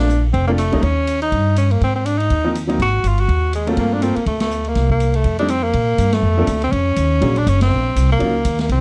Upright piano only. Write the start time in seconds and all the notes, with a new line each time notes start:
0.48 A3 C4 D4 F4
0.72 G3 A#3 C#4 D#4
2.44 F3 A#3 C4 D#4
2.67 F#3 A#3 C4 D#4
3.67 A3 A#3 C4 F4
4.01 A3 A#3 C4 F4
5.39 G3 A3 C4 D#4
6.37 F3 A#3 C4 D4 A4
7.21 F#3 A#3 C#4 D4 G#4
8.19 F#3 A#3 C#4 D#4 F4